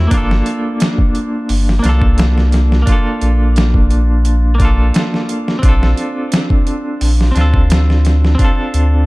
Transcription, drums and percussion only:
0.11 kick loud
0.11 closed hi-hat medium
0.31 snare soft
0.46 closed hi-hat medium
0.80 snare loud
0.80 closed hi-hat medium
0.98 kick medium
1.15 closed hi-hat medium
1.49 open hi-hat medium
1.69 snare soft
1.84 snare soft
1.84 closed hi-hat medium
2.02 kick medium
2.18 snare loud
2.18 closed hi-hat medium
2.38 snare soft
2.52 snare medium
2.52 closed hi-hat medium
2.72 snare soft
2.87 kick loud
2.87 closed hi-hat medium
3.21 closed hi-hat medium
3.56 snare loud
3.56 closed hi-hat medium
3.74 kick medium
3.91 closed hi-hat medium
4.25 closed hi-hat medium
4.60 kick medium
4.60 closed hi-hat medium
4.94 snare loud
4.94 closed hi-hat medium
5.14 snare soft
5.29 closed hi-hat medium
5.48 snare soft
5.63 kick loud
5.63 closed hi-hat medium
5.83 snare soft
5.97 closed hi-hat medium
6.32 snare loud
6.32 closed hi-hat medium
6.50 kick medium
6.67 closed hi-hat medium
7.01 open hi-hat medium
7.21 snare soft
7.36 snare soft
7.36 closed hi-hat medium
7.54 kick medium
7.70 snare loud
7.70 closed hi-hat medium
7.90 snare soft
8.05 snare medium
8.05 closed hi-hat medium
8.25 snare soft
8.39 kick loud
8.39 closed hi-hat medium
8.74 closed hi-hat medium

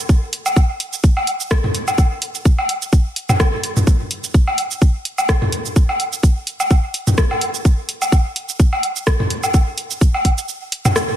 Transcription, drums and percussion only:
0.09 kick loud
0.09 shaker soft
0.33 closed hi-hat loud
0.46 closed hi-hat soft
0.46 low woodblock medium
0.46 shaker medium
0.56 kick loud
0.56 shaker soft
0.80 closed hi-hat medium
0.93 shaker medium
1.04 kick loud
1.04 shaker soft
1.17 low woodblock medium
1.27 closed hi-hat loud
1.40 shaker medium
1.51 kick loud
1.51 cross-stick loud
1.51 shaker soft
1.64 mid tom medium
1.75 closed hi-hat medium
1.88 low woodblock medium
1.88 shaker medium
1.98 kick loud
1.98 shaker soft
2.22 closed hi-hat medium
2.35 closed hi-hat soft
2.35 shaker soft
2.45 kick loud
2.45 shaker soft
2.58 low woodblock medium
2.69 closed hi-hat medium
2.82 closed hi-hat soft
2.82 shaker medium
2.93 kick loud
2.93 shaker soft
3.16 closed hi-hat loud
3.29 mid tom medium
3.29 low woodblock medium
3.29 shaker medium
3.40 kick loud
3.40 cross-stick loud
3.40 shaker soft
3.63 closed hi-hat medium
3.77 mid tom medium
3.77 shaker soft
3.87 kick loud
3.87 shaker soft
4.11 closed hi-hat medium
4.24 closed hi-hat soft
4.24 shaker medium
4.34 kick loud
4.34 shaker soft
4.47 low woodblock medium
4.58 closed hi-hat medium
4.71 shaker medium
4.82 kick loud
4.82 shaker soft
5.05 closed hi-hat medium
5.18 low woodblock medium
5.18 shaker medium
5.29 kick loud
5.29 cross-stick loud
5.29 shaker soft
5.42 mid tom medium
5.52 closed hi-hat medium
5.66 shaker medium
5.76 kick loud
5.76 shaker soft
5.89 low woodblock medium
6.00 closed hi-hat medium
6.13 closed hi-hat soft
6.13 shaker medium
6.23 kick loud
6.23 shaker soft
6.47 closed hi-hat medium
6.60 low woodblock medium
6.60 shaker medium
6.71 kick loud
6.71 shaker soft
6.94 closed hi-hat medium
7.07 mid tom medium
7.07 shaker medium
7.18 kick loud
7.18 cross-stick loud
7.18 shaker soft
7.31 low woodblock medium
7.41 closed hi-hat medium
7.55 shaker medium
7.65 kick loud
7.65 shaker soft
7.89 closed hi-hat medium
8.02 closed hi-hat soft
8.02 low woodblock medium
8.02 shaker medium
8.12 kick loud
8.12 shaker soft
8.36 closed hi-hat medium
8.49 shaker medium
8.60 kick loud
8.60 shaker soft
8.73 low woodblock medium
8.83 closed hi-hat medium
8.96 shaker medium
9.07 kick loud
9.07 cross-stick loud
9.07 shaker soft
9.20 mid tom medium
9.30 closed hi-hat medium
9.43 low woodblock medium
9.43 shaker medium
9.54 kick loud
9.54 shaker soft
9.78 closed hi-hat medium
9.91 closed hi-hat soft
9.91 shaker medium
10.01 kick loud
10.01 shaker soft
10.14 low woodblock medium
10.25 kick medium
10.25 closed hi-hat medium
10.38 closed hi-hat soft
10.38 shaker medium
10.49 shaker soft
10.72 closed hi-hat medium
10.85 mid tom medium
10.85 low woodblock medium
10.85 shaker medium
10.96 cross-stick loud
10.96 shaker soft

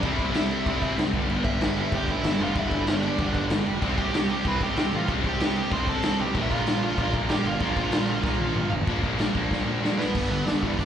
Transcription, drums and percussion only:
0.03 kick loud
0.03 crash medium
0.19 kick medium
0.19 crash medium
0.34 snare loud
0.34 crash loud
0.51 crash medium
0.66 kick loud
0.66 crash medium
0.82 kick medium
0.82 crash medium
0.98 snare loud
0.98 crash medium
1.13 kick loud
1.13 crash medium
1.30 crash medium
1.44 kick medium
1.44 crash medium
1.61 snare loud
1.61 crash medium
1.77 crash medium
1.92 kick loud
1.92 crash medium
2.08 kick medium
2.08 crash medium
2.24 snare loud
2.24 crash medium
2.40 crash medium
2.55 kick loud
2.55 crash medium
2.71 kick medium
2.71 crash medium
2.87 snare loud
2.87 crash medium
3.03 crash medium
3.18 kick loud
3.18 crash medium
3.34 kick medium
3.34 crash medium
3.50 snare loud
3.50 crash medium
3.66 crash medium
3.82 kick loud
3.82 crash medium
3.98 kick medium
3.98 crash medium
4.14 snare loud
4.14 crash medium
4.30 crash medium
4.45 kick loud
4.45 crash medium
4.61 kick medium
4.61 crash medium
4.76 snare loud
4.76 crash medium
4.93 crash medium
5.08 kick loud
5.08 crash medium
5.24 kick medium
5.24 crash medium
5.40 snare loud
5.40 crash loud
5.56 crash medium
5.71 kick loud
5.71 crash medium
5.87 kick medium
5.87 crash medium
6.03 snare loud
6.03 crash loud
6.19 crash medium
6.35 kick loud
6.35 crash medium
6.51 kick medium
6.51 crash medium
6.67 snare loud
6.67 crash loud
6.83 crash medium
6.98 kick loud
6.98 crash medium
7.14 kick medium
7.14 crash medium
7.29 snare loud
7.29 crash medium
7.45 crash medium
7.60 kick loud
7.60 crash medium
7.76 kick medium
7.76 crash medium
7.92 snare loud
7.92 crash medium
8.08 crash medium
8.24 kick loud
8.24 snare medium
8.39 high tom medium
8.55 mid tom loud
8.72 floor tom medium
8.87 kick loud
8.87 crash medium
9.03 kick medium
9.03 crash medium
9.19 snare loud
9.19 crash medium
9.35 kick medium
9.35 crash medium
9.51 kick loud
9.51 snare medium
9.85 snare loud
10.00 snare medium
10.15 kick loud
10.15 crash loud
10.47 snare loud
10.47 open hi-hat medium
10.63 kick medium
10.79 kick medium
10.79 open hi-hat medium

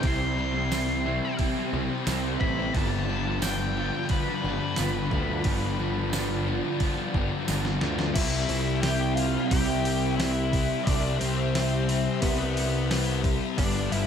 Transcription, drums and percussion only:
0.03 kick loud
0.03 open hi-hat medium
0.72 snare loud
0.72 open hi-hat medium
0.72 tambourine medium
1.39 kick loud
1.39 open hi-hat medium
2.07 snare loud
2.07 open hi-hat medium
2.07 tambourine loud
2.41 kick medium
2.75 kick loud
2.75 open hi-hat medium
3.42 snare loud
3.42 open hi-hat medium
3.42 tambourine loud
4.09 kick loud
4.09 open hi-hat medium
4.76 snare loud
4.76 open hi-hat medium
4.76 tambourine loud
5.11 kick medium
5.44 kick loud
5.44 open hi-hat medium
6.13 snare loud
6.13 open hi-hat medium
6.13 tambourine loud
6.80 kick loud
6.80 open hi-hat medium
7.14 kick medium
7.48 snare medium
7.48 open hi-hat medium
7.48 tambourine loud
7.65 snare medium
7.81 snare medium
7.99 snare medium
8.16 kick loud
8.16 open hi-hat medium
8.16 crash loud
8.49 open hi-hat medium
8.83 snare loud
8.83 open hi-hat medium
9.17 open hi-hat medium
9.51 kick loud
9.51 open hi-hat medium
9.85 open hi-hat medium
10.20 snare loud
10.20 open hi-hat medium
10.53 kick medium
10.53 open hi-hat medium
10.87 kick loud
10.87 open hi-hat loud
11.21 open hi-hat medium
11.55 snare loud
11.55 open hi-hat medium
11.89 open hi-hat medium
12.22 kick loud
12.22 open hi-hat medium
12.57 open hi-hat medium
12.91 snare loud
12.91 open hi-hat medium
13.24 kick loud
13.24 open hi-hat medium
13.58 kick loud
13.58 open hi-hat medium
13.92 open hi-hat medium

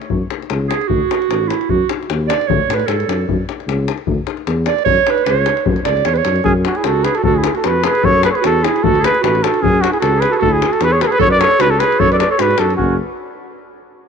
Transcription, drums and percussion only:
0.02 davul high soft
0.10 davul low medium
0.30 davul high medium
0.42 davul high soft
0.50 davul high medium
0.71 davul high medium
0.81 davul high soft
0.90 davul low medium
1.11 davul high medium
1.22 davul high soft
1.31 davul high medium
1.50 davul high medium
1.61 davul high soft
1.69 davul low medium
1.89 davul high medium
2.02 davul high soft
2.10 davul high medium
2.30 davul high medium
2.41 davul high soft
2.50 davul low loud
2.70 davul high medium
2.80 davul high soft
2.88 davul high medium
3.00 davul high soft
3.09 davul high medium
3.29 davul low medium
3.49 davul high medium
3.60 davul high soft
3.69 davul high medium
3.88 davul high medium
3.98 davul high soft
4.07 davul low medium
4.27 davul high medium
4.37 davul high soft
4.47 davul high medium
4.66 davul high medium
4.79 davul high soft
4.86 davul low loud
5.07 davul high medium
5.18 davul high soft
5.26 davul high medium
5.46 davul high medium
5.57 davul high soft
5.66 davul low loud
5.76 davul high soft
5.85 davul high medium
5.97 davul high soft
6.05 davul high medium
6.16 davul high soft
6.25 davul high medium
6.36 davul high soft
6.45 davul low loud
6.65 davul high medium
6.75 davul high soft
6.84 davul high medium
7.04 davul high medium
7.15 davul high soft
7.24 davul low loud
7.44 davul high medium
7.55 davul high soft
7.64 davul high medium
7.83 davul high medium
7.95 davul high soft
8.04 davul low loud
8.23 davul high medium
8.35 davul high soft
8.44 davul high medium
8.64 davul high medium
8.76 davul high soft
8.84 davul low loud
8.95 davul high soft
9.04 davul high medium
9.15 davul high soft
9.24 davul high medium
9.35 davul high soft
9.44 davul high medium
9.54 davul high soft
9.64 davul low loud
9.84 davul high medium
9.93 davul high soft
10.02 davul high medium
10.22 davul high medium
10.33 davul high soft
10.42 davul low medium
10.62 davul high medium
10.73 davul high soft
10.81 davul high medium
11.01 davul high medium
11.12 davul high soft
11.20 davul low loud
11.41 davul high medium
11.51 davul high soft
11.60 davul high medium
11.80 davul high medium
11.92 davul high soft
12.00 davul low loud
12.12 davul high soft
12.20 davul high medium
12.39 davul high medium
12.51 davul high soft
12.58 davul high medium
12.70 davul high soft
12.79 davul low medium

